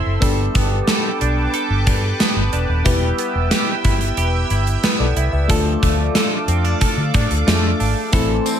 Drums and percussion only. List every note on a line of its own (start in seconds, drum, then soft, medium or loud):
0.22 kick loud
0.22 closed hi-hat medium
0.55 kick medium
0.55 closed hi-hat medium
0.87 snare loud
0.87 closed hi-hat medium
1.21 closed hi-hat medium
1.54 closed hi-hat medium
1.87 kick medium
1.87 closed hi-hat medium
2.20 snare loud
2.20 closed hi-hat medium
2.53 closed hi-hat medium
2.86 kick loud
2.86 closed hi-hat medium
3.18 closed hi-hat medium
3.51 snare loud
3.51 closed hi-hat medium
3.84 kick medium
3.84 closed hi-hat medium
4.01 closed hi-hat soft
4.17 closed hi-hat medium
4.50 closed hi-hat medium
4.67 closed hi-hat medium
4.83 snare loud
4.83 closed hi-hat medium
5.16 closed hi-hat medium
5.49 kick loud
5.49 closed hi-hat medium
5.83 kick medium
5.83 closed hi-hat medium
6.15 snare loud
6.15 closed hi-hat medium
6.48 closed hi-hat medium
6.65 closed hi-hat soft
6.81 kick medium
6.81 closed hi-hat medium
7.14 kick medium
7.14 closed hi-hat medium
7.31 closed hi-hat medium
7.48 snare loud
7.48 closed hi-hat medium
7.80 open hi-hat medium
8.13 kick loud
8.13 closed hi-hat medium
8.13 tambourine soft
8.46 closed hi-hat medium
8.46 tambourine soft